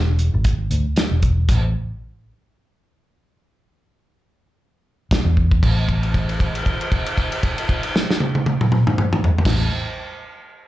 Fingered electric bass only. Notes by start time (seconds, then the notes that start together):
Already playing: E1
0.34 G#1
0.71 D2
0.97 muted fingered electric bass stroke
1.11 E1
1.49 A1
5.11 muted fingered electric bass stroke
5.25 E2
5.63 A1
9.45 A1